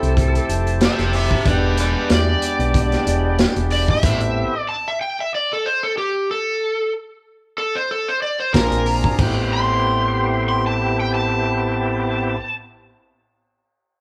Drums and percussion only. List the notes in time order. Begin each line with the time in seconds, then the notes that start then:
0.03 closed hi-hat
0.17 kick, closed hi-hat
0.35 closed hi-hat
0.49 closed hi-hat
0.67 closed hi-hat
0.81 snare, closed hi-hat
0.99 snare, closed hi-hat
1.13 open hi-hat
1.31 kick
1.46 kick, closed hi-hat
1.77 closed hi-hat
2.10 snare, closed hi-hat
2.42 closed hi-hat
2.60 closed hi-hat
2.74 kick, closed hi-hat
2.92 snare, closed hi-hat
3.07 closed hi-hat
3.39 snare, closed hi-hat
3.56 closed hi-hat
3.70 open hi-hat
3.88 kick
4.03 kick, closed hi-hat, crash
4.20 closed hi-hat
8.54 kick, snare, closed hi-hat
8.72 closed hi-hat
8.86 open hi-hat
9.04 kick
9.19 kick, crash